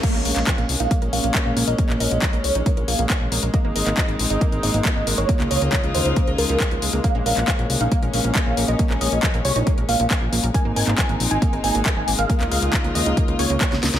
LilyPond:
<<
  \new Staff \with { instrumentName = "Supersaw synth" } { \time 4/4 \key bes \minor \tempo 4 = 137 f''8 f''8 f''8. f''8. f''8. f''8 ees''16~ | ees''8 ees''8. r16 des''8. r16 f''4~ f''16 r16 | ees''8 ees''8 ees''8. ees''8. ees''8. ees''8 des''16~ | des''8 des''8. r16 c''8. r16 bes'4~ bes'16 r16 |
f''8 f''8 f''8. f''8. f''8. f''8 ees''16~ | ees''8 ees''8. r16 des''8. r16 f''4~ f''16 r16 | aes''8 aes''8 aes''8. aes''8. aes''8. aes''8 f''16~ | f''8 f''8. r16 ees''8. r16 des''4~ des''16 r16 | }
  \new Staff \with { instrumentName = "String section" } { \time 4/4 \key bes \minor << { <bes des'>1~ | <bes des'>1 | <c' ees'>1 | <des ees' f'>1 |
des'1~ | des'1 | <c' ees'>1 | <des ees' f'>1 | } \\ { aes1~ | aes1~ | aes1 | bes1~ |
bes1~ | bes1 | aes1 | bes1 | } >> }
  \new Staff \with { instrumentName = "Synth arpeggio sound" } { \time 4/4 \key bes \minor bes16 bes16 bes'16 bes16 f16 bes16 r16 ees'16 bes16 bes'16 bes16 bes16 bes16 bes16 bes16 bes'16 | bes16 bes16 bes'16 bes16 f16 bes16 r16 ees'16 bes16 bes'16 bes16 bes16 r16 bes16 bes16 bes'16 | bes16 bes16 bes'16 bes16 f16 bes16 r16 ees'16 bes16 bes'16 bes16 bes16 r16 bes16 bes16 bes'16 | bes16 bes16 bes'16 bes16 f16 bes16 r16 ees'16 bes16 bes'16 f'16 f16 bes16 f16 aes16 bes16 |
bes16 bes16 bes'16 bes16 f16 bes16 r16 ees'16 bes16 bes'16 bes16 bes16 bes16 bes16 bes16 bes'16 | bes16 bes16 bes'16 bes16 f16 bes16 r16 ees'16 bes16 bes'16 bes16 bes16 bes16 bes16 bes16 bes'16 | bes16 bes16 bes'16 bes16 f16 bes16 r16 ees'16 bes16 bes'16 bes16 bes16 r16 bes16 bes16 bes'16 | bes16 bes16 bes'16 bes16 f16 bes16 r16 ees'16 bes16 bes'16 bes16 bes16 r16 bes16 bes16 bes'16 | }
  \new Staff \with { instrumentName = "Analog synth bass" } { \clef bass \time 4/4 \key bes \minor r16 bes,,16 bes,,16 bes,,16 r16 bes,,16 c,16 bes,,16 r16 bes,,16 bes,,16 bes,,16 r16 bes,,16 bes,,16 bes,,16 | r16 bes,,16 bes,,16 bes,,16 r16 bes,,16 c,16 bes,,16 r16 bes,,16 bes,,16 bes,,16 r16 bes,,16 bes,,16 bes,,16 | r16 aes,,16 aes,,16 aes,,16 r16 aes,,16 bes,,16 aes,,16 r16 aes,,16 aes,,16 aes,,16 r16 aes,,16 aes,,16 aes,,16 | r16 des,16 des,16 des,16 r16 des,16 ees,16 des,16 r16 des,16 des,16 des,16 r16 des,16 des,16 des,16 |
r16 bes,,16 bes,,16 bes,,16 r16 bes,,16 c,16 bes,,16 r16 bes,,16 bes,,16 bes,,16 r16 bes,,16 bes,,16 bes,,16 | r16 bes,,16 bes,,16 bes,,16 r16 bes,,16 c,16 bes,,16 r16 bes,,16 bes,,16 bes,,16 r16 bes,,16 bes,,16 bes,,16 | r16 aes,,16 aes,,16 aes,,16 r16 aes,,16 bes,,16 aes,,16 r16 aes,,16 aes,,16 aes,,16 r16 aes,,16 aes,,16 aes,,16 | r16 des,16 des,16 des,16 r16 des,16 ees,16 des,16 r16 des,16 des,16 des,16 r16 des,16 des,16 des,16 | }
  \new DrumStaff \with { instrumentName = "Drums" } \drummode { \time 4/4 <cymc hh bd>8 hho16 <hc hh>16 <hc hh bd>16 hh16 hho16 hh16 <hh bd>16 hh16 hho16 hh16 <hc hh bd>8 hho16 hh16 | <hh bd>16 hc16 hho16 hh16 <hc hh bd>16 hh16 hho16 hh16 <hh bd>16 hh16 hho16 hh16 <hc hh bd>8 hho16 hh16 | <hh bd>8 hho16 <hc hh>16 <hc hh bd>16 hh16 hho16 hh16 <hh bd>16 hh16 hho16 hh16 <hc hh bd>8 hho16 hh16 | <hh bd>16 <hc hh>16 hho16 hh16 <hc hh bd>16 hh16 hho16 hh16 <hh bd>16 hh16 hho16 hh16 <hc hh bd>16 hh16 hho16 hh16 |
<hh bd>8 hho16 <hc hh>16 <hc hh bd>16 hh16 hho16 hh16 <hh bd>16 hh16 hho16 hh16 <hc hh bd>8 hho16 hh16 | <hh bd>16 hc16 hho16 hh16 <hc hh bd>16 hh16 hho16 hh16 <hh bd>16 hh16 hho16 hh16 <hc hh bd>8 hho16 hh16 | <hh bd>8 hho16 <hc hh>16 <hc hh bd>16 hh16 hho16 hh16 <hh bd>16 hh16 hho16 hh16 <hc hh bd>8 hho16 hh16 | <hh bd>16 <hc hh>16 hho16 hh16 <hc hh bd>16 hh16 hho16 hh16 <hh bd>16 hh16 hho16 hh16 <hc hh bd>16 <hh sn>16 <hho sn>16 <hh sn>16 | }
>>